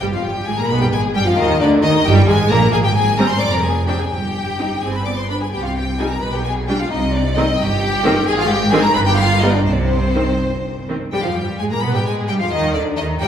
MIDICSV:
0, 0, Header, 1, 6, 480
1, 0, Start_track
1, 0, Key_signature, -3, "minor"
1, 0, Tempo, 451807
1, 19, Time_signature, 6, 3, 24, 8
1, 3379, Tempo, 468750
1, 6259, Tempo, 454890
1, 9619, Tempo, 488202
1, 11539, Tempo, 459067
1, 13784, End_track
2, 0, Start_track
2, 0, Title_t, "Violin section"
2, 0, Program_c, 0, 48
2, 12, Note_on_c, 0, 79, 105
2, 62, Note_off_c, 0, 79, 0
2, 140, Note_on_c, 0, 77, 88
2, 258, Note_on_c, 0, 79, 94
2, 260, Note_off_c, 0, 77, 0
2, 500, Note_on_c, 0, 80, 104
2, 503, Note_off_c, 0, 79, 0
2, 624, Note_off_c, 0, 80, 0
2, 632, Note_on_c, 0, 82, 105
2, 736, Note_on_c, 0, 83, 99
2, 749, Note_off_c, 0, 82, 0
2, 860, Note_off_c, 0, 83, 0
2, 869, Note_on_c, 0, 79, 99
2, 916, Note_off_c, 0, 79, 0
2, 984, Note_on_c, 0, 80, 117
2, 1069, Note_off_c, 0, 80, 0
2, 1224, Note_on_c, 0, 79, 109
2, 1339, Note_off_c, 0, 79, 0
2, 1351, Note_on_c, 0, 77, 100
2, 1465, Note_off_c, 0, 77, 0
2, 1466, Note_on_c, 0, 75, 117
2, 1704, Note_off_c, 0, 75, 0
2, 1710, Note_on_c, 0, 74, 107
2, 1795, Note_off_c, 0, 74, 0
2, 1945, Note_on_c, 0, 75, 127
2, 2181, Note_off_c, 0, 75, 0
2, 2187, Note_on_c, 0, 79, 127
2, 2425, Note_off_c, 0, 79, 0
2, 2427, Note_on_c, 0, 80, 127
2, 2658, Note_off_c, 0, 80, 0
2, 2661, Note_on_c, 0, 82, 125
2, 2897, Note_off_c, 0, 82, 0
2, 2898, Note_on_c, 0, 80, 125
2, 2945, Note_off_c, 0, 80, 0
2, 3023, Note_on_c, 0, 79, 120
2, 3137, Note_off_c, 0, 79, 0
2, 3142, Note_on_c, 0, 80, 123
2, 3376, Note_on_c, 0, 82, 119
2, 3377, Note_off_c, 0, 80, 0
2, 3495, Note_off_c, 0, 82, 0
2, 3499, Note_on_c, 0, 84, 121
2, 3610, Note_on_c, 0, 86, 114
2, 3616, Note_off_c, 0, 84, 0
2, 3729, Note_on_c, 0, 82, 108
2, 3731, Note_off_c, 0, 86, 0
2, 3847, Note_on_c, 0, 80, 104
2, 3850, Note_off_c, 0, 82, 0
2, 4085, Note_on_c, 0, 79, 101
2, 4089, Note_off_c, 0, 80, 0
2, 4207, Note_off_c, 0, 79, 0
2, 4214, Note_on_c, 0, 80, 89
2, 4321, Note_on_c, 0, 79, 103
2, 4335, Note_off_c, 0, 80, 0
2, 5053, Note_off_c, 0, 79, 0
2, 5054, Note_on_c, 0, 80, 96
2, 5178, Note_off_c, 0, 80, 0
2, 5180, Note_on_c, 0, 83, 93
2, 5299, Note_on_c, 0, 86, 90
2, 5301, Note_off_c, 0, 83, 0
2, 5421, Note_off_c, 0, 86, 0
2, 5425, Note_on_c, 0, 84, 93
2, 5544, Note_on_c, 0, 83, 89
2, 5545, Note_off_c, 0, 84, 0
2, 5662, Note_off_c, 0, 83, 0
2, 5669, Note_on_c, 0, 80, 87
2, 5784, Note_off_c, 0, 80, 0
2, 5785, Note_on_c, 0, 79, 95
2, 5902, Note_off_c, 0, 79, 0
2, 5905, Note_on_c, 0, 77, 91
2, 6017, Note_on_c, 0, 79, 96
2, 6021, Note_off_c, 0, 77, 0
2, 6252, Note_off_c, 0, 79, 0
2, 6254, Note_on_c, 0, 80, 98
2, 6374, Note_on_c, 0, 82, 98
2, 6378, Note_off_c, 0, 80, 0
2, 6491, Note_on_c, 0, 83, 98
2, 6498, Note_off_c, 0, 82, 0
2, 6617, Note_off_c, 0, 83, 0
2, 6621, Note_on_c, 0, 79, 103
2, 6733, Note_on_c, 0, 80, 99
2, 6743, Note_off_c, 0, 79, 0
2, 6817, Note_off_c, 0, 80, 0
2, 6975, Note_on_c, 0, 79, 99
2, 7099, Note_off_c, 0, 79, 0
2, 7105, Note_on_c, 0, 77, 100
2, 7218, Note_on_c, 0, 75, 107
2, 7226, Note_off_c, 0, 77, 0
2, 7459, Note_off_c, 0, 75, 0
2, 7463, Note_on_c, 0, 74, 111
2, 7700, Note_on_c, 0, 75, 117
2, 7707, Note_off_c, 0, 74, 0
2, 7944, Note_off_c, 0, 75, 0
2, 7945, Note_on_c, 0, 79, 114
2, 8661, Note_off_c, 0, 79, 0
2, 8661, Note_on_c, 0, 80, 127
2, 8709, Note_off_c, 0, 80, 0
2, 8780, Note_on_c, 0, 77, 125
2, 8888, Note_on_c, 0, 79, 123
2, 8897, Note_off_c, 0, 77, 0
2, 9126, Note_on_c, 0, 80, 127
2, 9131, Note_off_c, 0, 79, 0
2, 9250, Note_off_c, 0, 80, 0
2, 9252, Note_on_c, 0, 82, 127
2, 9367, Note_on_c, 0, 83, 127
2, 9374, Note_off_c, 0, 82, 0
2, 9418, Note_off_c, 0, 83, 0
2, 9491, Note_on_c, 0, 79, 127
2, 9607, Note_on_c, 0, 77, 127
2, 9615, Note_off_c, 0, 79, 0
2, 9844, Note_on_c, 0, 75, 118
2, 9845, Note_off_c, 0, 77, 0
2, 9968, Note_on_c, 0, 74, 107
2, 9969, Note_off_c, 0, 75, 0
2, 10083, Note_on_c, 0, 72, 100
2, 10092, Note_off_c, 0, 74, 0
2, 10156, Note_on_c, 0, 74, 83
2, 10161, Note_off_c, 0, 72, 0
2, 10231, Note_on_c, 0, 72, 109
2, 10236, Note_off_c, 0, 74, 0
2, 11300, Note_off_c, 0, 72, 0
2, 11540, Note_on_c, 0, 79, 103
2, 11654, Note_off_c, 0, 79, 0
2, 11657, Note_on_c, 0, 77, 96
2, 11773, Note_on_c, 0, 79, 95
2, 11782, Note_off_c, 0, 77, 0
2, 12019, Note_on_c, 0, 80, 94
2, 12024, Note_off_c, 0, 79, 0
2, 12070, Note_off_c, 0, 80, 0
2, 12143, Note_on_c, 0, 82, 98
2, 12265, Note_off_c, 0, 82, 0
2, 12267, Note_on_c, 0, 83, 101
2, 12386, Note_on_c, 0, 79, 99
2, 12388, Note_off_c, 0, 83, 0
2, 12503, Note_on_c, 0, 80, 95
2, 12505, Note_off_c, 0, 79, 0
2, 12587, Note_off_c, 0, 80, 0
2, 12743, Note_on_c, 0, 79, 102
2, 12792, Note_off_c, 0, 79, 0
2, 12861, Note_on_c, 0, 77, 94
2, 12981, Note_on_c, 0, 75, 113
2, 12982, Note_off_c, 0, 77, 0
2, 13220, Note_on_c, 0, 74, 102
2, 13224, Note_off_c, 0, 75, 0
2, 13304, Note_off_c, 0, 74, 0
2, 13458, Note_on_c, 0, 75, 108
2, 13541, Note_off_c, 0, 75, 0
2, 13697, Note_on_c, 0, 79, 127
2, 13784, Note_off_c, 0, 79, 0
2, 13784, End_track
3, 0, Start_track
3, 0, Title_t, "Violin section"
3, 0, Program_c, 1, 48
3, 16, Note_on_c, 1, 67, 90
3, 131, Note_off_c, 1, 67, 0
3, 147, Note_on_c, 1, 65, 76
3, 264, Note_off_c, 1, 65, 0
3, 267, Note_on_c, 1, 67, 84
3, 505, Note_on_c, 1, 68, 83
3, 508, Note_off_c, 1, 67, 0
3, 626, Note_off_c, 1, 68, 0
3, 633, Note_on_c, 1, 70, 89
3, 743, Note_on_c, 1, 71, 95
3, 749, Note_off_c, 1, 70, 0
3, 860, Note_on_c, 1, 67, 84
3, 864, Note_off_c, 1, 71, 0
3, 979, Note_on_c, 1, 68, 102
3, 982, Note_off_c, 1, 67, 0
3, 1212, Note_on_c, 1, 67, 103
3, 1219, Note_off_c, 1, 68, 0
3, 1261, Note_off_c, 1, 67, 0
3, 1339, Note_on_c, 1, 65, 89
3, 1452, Note_on_c, 1, 63, 109
3, 1457, Note_off_c, 1, 65, 0
3, 1693, Note_on_c, 1, 62, 106
3, 1697, Note_off_c, 1, 63, 0
3, 1934, Note_on_c, 1, 63, 111
3, 1940, Note_off_c, 1, 62, 0
3, 2175, Note_off_c, 1, 63, 0
3, 2176, Note_on_c, 1, 67, 120
3, 2261, Note_off_c, 1, 67, 0
3, 2417, Note_on_c, 1, 68, 107
3, 2502, Note_off_c, 1, 68, 0
3, 2662, Note_on_c, 1, 70, 124
3, 2747, Note_off_c, 1, 70, 0
3, 2888, Note_on_c, 1, 68, 118
3, 2938, Note_off_c, 1, 68, 0
3, 3011, Note_on_c, 1, 67, 92
3, 3060, Note_off_c, 1, 67, 0
3, 3132, Note_on_c, 1, 68, 105
3, 3372, Note_off_c, 1, 68, 0
3, 3378, Note_on_c, 1, 70, 99
3, 3494, Note_off_c, 1, 70, 0
3, 3495, Note_on_c, 1, 72, 99
3, 3607, Note_on_c, 1, 74, 115
3, 3612, Note_off_c, 1, 72, 0
3, 3729, Note_off_c, 1, 74, 0
3, 3732, Note_on_c, 1, 70, 95
3, 3845, Note_on_c, 1, 68, 80
3, 3851, Note_off_c, 1, 70, 0
3, 4081, Note_on_c, 1, 67, 96
3, 4083, Note_off_c, 1, 68, 0
3, 4131, Note_off_c, 1, 67, 0
3, 4203, Note_on_c, 1, 68, 85
3, 4253, Note_off_c, 1, 68, 0
3, 4328, Note_on_c, 1, 67, 93
3, 5042, Note_off_c, 1, 67, 0
3, 5053, Note_on_c, 1, 68, 83
3, 5177, Note_off_c, 1, 68, 0
3, 5182, Note_on_c, 1, 71, 74
3, 5292, Note_on_c, 1, 74, 79
3, 5302, Note_off_c, 1, 71, 0
3, 5415, Note_off_c, 1, 74, 0
3, 5415, Note_on_c, 1, 72, 78
3, 5465, Note_off_c, 1, 72, 0
3, 5538, Note_on_c, 1, 71, 84
3, 5588, Note_off_c, 1, 71, 0
3, 5655, Note_on_c, 1, 68, 80
3, 5705, Note_off_c, 1, 68, 0
3, 5782, Note_on_c, 1, 67, 91
3, 5896, Note_on_c, 1, 65, 84
3, 5901, Note_off_c, 1, 67, 0
3, 6014, Note_on_c, 1, 67, 81
3, 6019, Note_off_c, 1, 65, 0
3, 6096, Note_off_c, 1, 67, 0
3, 6251, Note_on_c, 1, 68, 82
3, 6301, Note_off_c, 1, 68, 0
3, 6382, Note_on_c, 1, 70, 79
3, 6430, Note_off_c, 1, 70, 0
3, 6490, Note_on_c, 1, 71, 96
3, 6614, Note_off_c, 1, 71, 0
3, 6617, Note_on_c, 1, 67, 80
3, 6738, Note_on_c, 1, 68, 90
3, 6741, Note_off_c, 1, 67, 0
3, 6983, Note_off_c, 1, 68, 0
3, 6984, Note_on_c, 1, 67, 94
3, 7033, Note_off_c, 1, 67, 0
3, 7114, Note_on_c, 1, 65, 90
3, 7228, Note_on_c, 1, 63, 96
3, 7229, Note_off_c, 1, 65, 0
3, 7312, Note_off_c, 1, 63, 0
3, 7467, Note_on_c, 1, 62, 93
3, 7552, Note_off_c, 1, 62, 0
3, 7708, Note_on_c, 1, 63, 93
3, 7793, Note_off_c, 1, 63, 0
3, 7949, Note_on_c, 1, 67, 125
3, 8649, Note_off_c, 1, 67, 0
3, 8663, Note_on_c, 1, 68, 127
3, 8779, Note_off_c, 1, 68, 0
3, 8788, Note_on_c, 1, 65, 116
3, 8897, Note_on_c, 1, 67, 109
3, 8903, Note_off_c, 1, 65, 0
3, 9126, Note_on_c, 1, 68, 115
3, 9135, Note_off_c, 1, 67, 0
3, 9250, Note_off_c, 1, 68, 0
3, 9252, Note_on_c, 1, 70, 116
3, 9370, Note_on_c, 1, 71, 127
3, 9374, Note_off_c, 1, 70, 0
3, 9420, Note_off_c, 1, 71, 0
3, 9497, Note_on_c, 1, 67, 114
3, 9618, Note_off_c, 1, 67, 0
3, 9618, Note_on_c, 1, 65, 121
3, 9848, Note_on_c, 1, 63, 108
3, 9855, Note_off_c, 1, 65, 0
3, 9971, Note_on_c, 1, 62, 92
3, 9972, Note_off_c, 1, 63, 0
3, 10020, Note_off_c, 1, 62, 0
3, 10101, Note_on_c, 1, 60, 104
3, 11284, Note_off_c, 1, 60, 0
3, 11546, Note_on_c, 1, 67, 94
3, 11657, Note_off_c, 1, 67, 0
3, 11665, Note_on_c, 1, 65, 71
3, 11785, Note_on_c, 1, 67, 77
3, 11786, Note_off_c, 1, 65, 0
3, 12030, Note_off_c, 1, 67, 0
3, 12035, Note_on_c, 1, 68, 83
3, 12154, Note_off_c, 1, 68, 0
3, 12154, Note_on_c, 1, 70, 79
3, 12201, Note_off_c, 1, 70, 0
3, 12272, Note_on_c, 1, 71, 99
3, 12389, Note_off_c, 1, 71, 0
3, 12391, Note_on_c, 1, 67, 78
3, 12508, Note_on_c, 1, 68, 98
3, 12510, Note_off_c, 1, 67, 0
3, 12747, Note_off_c, 1, 68, 0
3, 12753, Note_on_c, 1, 67, 96
3, 12867, Note_on_c, 1, 65, 80
3, 12870, Note_off_c, 1, 67, 0
3, 12985, Note_off_c, 1, 65, 0
3, 12989, Note_on_c, 1, 63, 97
3, 13223, Note_off_c, 1, 63, 0
3, 13230, Note_on_c, 1, 62, 83
3, 13462, Note_off_c, 1, 62, 0
3, 13467, Note_on_c, 1, 63, 95
3, 13704, Note_off_c, 1, 63, 0
3, 13715, Note_on_c, 1, 67, 112
3, 13784, Note_off_c, 1, 67, 0
3, 13784, End_track
4, 0, Start_track
4, 0, Title_t, "Viola section"
4, 0, Program_c, 2, 48
4, 16, Note_on_c, 2, 55, 108
4, 66, Note_off_c, 2, 55, 0
4, 139, Note_on_c, 2, 53, 80
4, 260, Note_off_c, 2, 53, 0
4, 269, Note_on_c, 2, 55, 82
4, 509, Note_off_c, 2, 55, 0
4, 509, Note_on_c, 2, 56, 94
4, 625, Note_on_c, 2, 58, 88
4, 628, Note_off_c, 2, 56, 0
4, 745, Note_off_c, 2, 58, 0
4, 748, Note_on_c, 2, 59, 98
4, 863, Note_on_c, 2, 55, 84
4, 864, Note_off_c, 2, 59, 0
4, 983, Note_off_c, 2, 55, 0
4, 984, Note_on_c, 2, 56, 90
4, 1069, Note_off_c, 2, 56, 0
4, 1221, Note_on_c, 2, 55, 105
4, 1337, Note_on_c, 2, 53, 92
4, 1338, Note_off_c, 2, 55, 0
4, 1455, Note_off_c, 2, 53, 0
4, 1455, Note_on_c, 2, 51, 127
4, 1697, Note_on_c, 2, 50, 106
4, 1699, Note_off_c, 2, 51, 0
4, 1937, Note_off_c, 2, 50, 0
4, 1945, Note_on_c, 2, 51, 108
4, 2185, Note_off_c, 2, 51, 0
4, 2190, Note_on_c, 2, 55, 121
4, 2421, Note_off_c, 2, 55, 0
4, 2428, Note_on_c, 2, 56, 123
4, 2662, Note_on_c, 2, 58, 123
4, 2663, Note_off_c, 2, 56, 0
4, 2898, Note_off_c, 2, 58, 0
4, 3382, Note_on_c, 2, 55, 92
4, 3383, Note_on_c, 2, 60, 94
4, 3490, Note_off_c, 2, 55, 0
4, 3491, Note_off_c, 2, 60, 0
4, 4087, Note_on_c, 2, 60, 77
4, 4089, Note_on_c, 2, 62, 79
4, 4202, Note_off_c, 2, 60, 0
4, 4202, Note_off_c, 2, 62, 0
4, 4819, Note_on_c, 2, 63, 67
4, 4820, Note_on_c, 2, 60, 65
4, 4931, Note_off_c, 2, 60, 0
4, 4931, Note_off_c, 2, 63, 0
4, 5066, Note_on_c, 2, 60, 93
4, 5288, Note_off_c, 2, 60, 0
4, 5308, Note_on_c, 2, 59, 75
4, 5545, Note_on_c, 2, 62, 74
4, 5547, Note_off_c, 2, 59, 0
4, 5627, Note_off_c, 2, 62, 0
4, 6257, Note_on_c, 2, 55, 77
4, 6260, Note_on_c, 2, 63, 69
4, 6370, Note_off_c, 2, 55, 0
4, 6372, Note_off_c, 2, 63, 0
4, 6984, Note_on_c, 2, 55, 85
4, 6989, Note_on_c, 2, 62, 79
4, 7098, Note_off_c, 2, 55, 0
4, 7100, Note_off_c, 2, 62, 0
4, 7710, Note_on_c, 2, 51, 85
4, 7712, Note_on_c, 2, 60, 86
4, 7821, Note_off_c, 2, 51, 0
4, 7822, Note_off_c, 2, 60, 0
4, 8423, Note_on_c, 2, 60, 103
4, 8424, Note_on_c, 2, 51, 110
4, 8535, Note_off_c, 2, 51, 0
4, 8535, Note_off_c, 2, 60, 0
4, 9135, Note_on_c, 2, 51, 112
4, 9135, Note_on_c, 2, 60, 111
4, 9246, Note_off_c, 2, 51, 0
4, 9246, Note_off_c, 2, 60, 0
4, 9854, Note_on_c, 2, 55, 99
4, 9856, Note_on_c, 2, 59, 98
4, 9966, Note_off_c, 2, 55, 0
4, 9967, Note_off_c, 2, 59, 0
4, 10572, Note_on_c, 2, 51, 81
4, 10573, Note_on_c, 2, 60, 69
4, 10687, Note_off_c, 2, 51, 0
4, 10687, Note_off_c, 2, 60, 0
4, 11301, Note_on_c, 2, 51, 70
4, 11302, Note_on_c, 2, 60, 71
4, 11414, Note_off_c, 2, 51, 0
4, 11415, Note_off_c, 2, 60, 0
4, 11535, Note_on_c, 2, 55, 114
4, 11585, Note_off_c, 2, 55, 0
4, 11657, Note_on_c, 2, 53, 76
4, 11780, Note_off_c, 2, 53, 0
4, 11782, Note_on_c, 2, 55, 75
4, 11866, Note_off_c, 2, 55, 0
4, 12025, Note_on_c, 2, 56, 81
4, 12147, Note_off_c, 2, 56, 0
4, 12150, Note_on_c, 2, 58, 82
4, 12262, Note_on_c, 2, 59, 97
4, 12271, Note_off_c, 2, 58, 0
4, 12382, Note_on_c, 2, 55, 90
4, 12386, Note_off_c, 2, 59, 0
4, 12497, Note_on_c, 2, 56, 91
4, 12505, Note_off_c, 2, 55, 0
4, 12737, Note_off_c, 2, 56, 0
4, 12739, Note_on_c, 2, 55, 88
4, 12861, Note_off_c, 2, 55, 0
4, 12862, Note_on_c, 2, 53, 84
4, 12985, Note_off_c, 2, 53, 0
4, 12987, Note_on_c, 2, 51, 110
4, 13222, Note_off_c, 2, 51, 0
4, 13231, Note_on_c, 2, 50, 91
4, 13467, Note_off_c, 2, 50, 0
4, 13469, Note_on_c, 2, 51, 92
4, 13552, Note_off_c, 2, 51, 0
4, 13699, Note_on_c, 2, 55, 115
4, 13784, Note_off_c, 2, 55, 0
4, 13784, End_track
5, 0, Start_track
5, 0, Title_t, "Cello section"
5, 0, Program_c, 3, 48
5, 15, Note_on_c, 3, 43, 95
5, 131, Note_off_c, 3, 43, 0
5, 142, Note_on_c, 3, 41, 85
5, 263, Note_on_c, 3, 43, 90
5, 264, Note_off_c, 3, 41, 0
5, 501, Note_off_c, 3, 43, 0
5, 503, Note_on_c, 3, 44, 93
5, 552, Note_off_c, 3, 44, 0
5, 627, Note_on_c, 3, 46, 90
5, 744, Note_off_c, 3, 46, 0
5, 747, Note_on_c, 3, 47, 105
5, 866, Note_off_c, 3, 47, 0
5, 866, Note_on_c, 3, 43, 93
5, 982, Note_on_c, 3, 44, 95
5, 985, Note_off_c, 3, 43, 0
5, 1220, Note_off_c, 3, 44, 0
5, 1220, Note_on_c, 3, 43, 89
5, 1338, Note_on_c, 3, 41, 100
5, 1339, Note_off_c, 3, 43, 0
5, 1458, Note_off_c, 3, 41, 0
5, 1460, Note_on_c, 3, 39, 123
5, 1696, Note_off_c, 3, 39, 0
5, 1698, Note_on_c, 3, 38, 99
5, 1937, Note_off_c, 3, 38, 0
5, 1940, Note_on_c, 3, 39, 105
5, 2025, Note_off_c, 3, 39, 0
5, 2183, Note_on_c, 3, 43, 126
5, 2418, Note_off_c, 3, 43, 0
5, 2423, Note_on_c, 3, 44, 115
5, 2508, Note_off_c, 3, 44, 0
5, 2658, Note_on_c, 3, 46, 106
5, 2891, Note_off_c, 3, 46, 0
5, 2896, Note_on_c, 3, 44, 110
5, 3496, Note_off_c, 3, 44, 0
5, 3613, Note_on_c, 3, 41, 105
5, 4211, Note_off_c, 3, 41, 0
5, 4332, Note_on_c, 3, 43, 80
5, 4938, Note_off_c, 3, 43, 0
5, 5060, Note_on_c, 3, 43, 77
5, 5665, Note_off_c, 3, 43, 0
5, 5779, Note_on_c, 3, 48, 80
5, 6377, Note_off_c, 3, 48, 0
5, 6497, Note_on_c, 3, 47, 89
5, 7104, Note_off_c, 3, 47, 0
5, 7224, Note_on_c, 3, 48, 97
5, 7827, Note_off_c, 3, 48, 0
5, 7940, Note_on_c, 3, 43, 108
5, 8539, Note_off_c, 3, 43, 0
5, 8657, Note_on_c, 3, 44, 124
5, 9253, Note_off_c, 3, 44, 0
5, 9368, Note_on_c, 3, 43, 127
5, 9972, Note_off_c, 3, 43, 0
5, 10089, Note_on_c, 3, 48, 101
5, 10695, Note_off_c, 3, 48, 0
5, 10816, Note_on_c, 3, 43, 77
5, 11423, Note_off_c, 3, 43, 0
5, 11540, Note_on_c, 3, 55, 92
5, 11589, Note_off_c, 3, 55, 0
5, 11660, Note_on_c, 3, 53, 84
5, 11710, Note_off_c, 3, 53, 0
5, 11782, Note_on_c, 3, 55, 84
5, 12023, Note_off_c, 3, 55, 0
5, 12026, Note_on_c, 3, 56, 89
5, 12149, Note_off_c, 3, 56, 0
5, 12151, Note_on_c, 3, 58, 86
5, 12199, Note_off_c, 3, 58, 0
5, 12269, Note_on_c, 3, 59, 93
5, 12317, Note_off_c, 3, 59, 0
5, 12393, Note_on_c, 3, 55, 81
5, 12506, Note_on_c, 3, 56, 89
5, 12508, Note_off_c, 3, 55, 0
5, 12741, Note_off_c, 3, 56, 0
5, 12746, Note_on_c, 3, 55, 84
5, 12863, Note_on_c, 3, 53, 81
5, 12867, Note_off_c, 3, 55, 0
5, 12982, Note_on_c, 3, 51, 97
5, 12986, Note_off_c, 3, 53, 0
5, 13220, Note_off_c, 3, 51, 0
5, 13226, Note_on_c, 3, 50, 87
5, 13460, Note_off_c, 3, 50, 0
5, 13462, Note_on_c, 3, 51, 101
5, 13695, Note_on_c, 3, 55, 107
5, 13696, Note_off_c, 3, 51, 0
5, 13784, Note_off_c, 3, 55, 0
5, 13784, End_track
6, 0, Start_track
6, 0, Title_t, "Double bass section"
6, 0, Program_c, 4, 48
6, 20, Note_on_c, 4, 31, 96
6, 133, Note_off_c, 4, 31, 0
6, 258, Note_on_c, 4, 31, 79
6, 499, Note_off_c, 4, 31, 0
6, 505, Note_on_c, 4, 32, 83
6, 554, Note_off_c, 4, 32, 0
6, 740, Note_on_c, 4, 35, 110
6, 862, Note_off_c, 4, 35, 0
6, 977, Note_on_c, 4, 32, 96
6, 1218, Note_off_c, 4, 32, 0
6, 1220, Note_on_c, 4, 31, 93
6, 1340, Note_off_c, 4, 31, 0
6, 1455, Note_on_c, 4, 39, 104
6, 1694, Note_off_c, 4, 39, 0
6, 1697, Note_on_c, 4, 38, 101
6, 1937, Note_off_c, 4, 38, 0
6, 1942, Note_on_c, 4, 39, 118
6, 2027, Note_off_c, 4, 39, 0
6, 2185, Note_on_c, 4, 31, 125
6, 2419, Note_off_c, 4, 31, 0
6, 2423, Note_on_c, 4, 32, 109
6, 2508, Note_off_c, 4, 32, 0
6, 2660, Note_on_c, 4, 34, 111
6, 2892, Note_off_c, 4, 34, 0
6, 2898, Note_on_c, 4, 32, 107
6, 3497, Note_off_c, 4, 32, 0
6, 3617, Note_on_c, 4, 29, 99
6, 4213, Note_off_c, 4, 29, 0
6, 4332, Note_on_c, 4, 31, 82
6, 4938, Note_off_c, 4, 31, 0
6, 5059, Note_on_c, 4, 31, 74
6, 5664, Note_off_c, 4, 31, 0
6, 5783, Note_on_c, 4, 36, 79
6, 6379, Note_off_c, 4, 36, 0
6, 6496, Note_on_c, 4, 35, 86
6, 7104, Note_off_c, 4, 35, 0
6, 7224, Note_on_c, 4, 36, 93
6, 7828, Note_off_c, 4, 36, 0
6, 7950, Note_on_c, 4, 31, 95
6, 8544, Note_off_c, 4, 31, 0
6, 8659, Note_on_c, 4, 32, 115
6, 9254, Note_off_c, 4, 32, 0
6, 9371, Note_on_c, 4, 31, 119
6, 9973, Note_off_c, 4, 31, 0
6, 10095, Note_on_c, 4, 36, 101
6, 10698, Note_off_c, 4, 36, 0
6, 10821, Note_on_c, 4, 31, 76
6, 11426, Note_off_c, 4, 31, 0
6, 11543, Note_on_c, 4, 43, 93
6, 11655, Note_off_c, 4, 43, 0
6, 11664, Note_on_c, 4, 41, 77
6, 11785, Note_on_c, 4, 43, 87
6, 11786, Note_off_c, 4, 41, 0
6, 11869, Note_off_c, 4, 43, 0
6, 12032, Note_on_c, 4, 44, 86
6, 12080, Note_off_c, 4, 44, 0
6, 12152, Note_on_c, 4, 46, 88
6, 12200, Note_off_c, 4, 46, 0
6, 12275, Note_on_c, 4, 47, 108
6, 12390, Note_off_c, 4, 47, 0
6, 12399, Note_on_c, 4, 43, 82
6, 12514, Note_off_c, 4, 43, 0
6, 12517, Note_on_c, 4, 44, 83
6, 12747, Note_off_c, 4, 44, 0
6, 12752, Note_on_c, 4, 43, 98
6, 12799, Note_off_c, 4, 43, 0
6, 12879, Note_on_c, 4, 41, 80
6, 12991, Note_off_c, 4, 41, 0
6, 13001, Note_on_c, 4, 39, 105
6, 13233, Note_on_c, 4, 38, 95
6, 13234, Note_off_c, 4, 39, 0
6, 13468, Note_off_c, 4, 38, 0
6, 13468, Note_on_c, 4, 39, 97
6, 13704, Note_off_c, 4, 39, 0
6, 13707, Note_on_c, 4, 43, 101
6, 13784, Note_off_c, 4, 43, 0
6, 13784, End_track
0, 0, End_of_file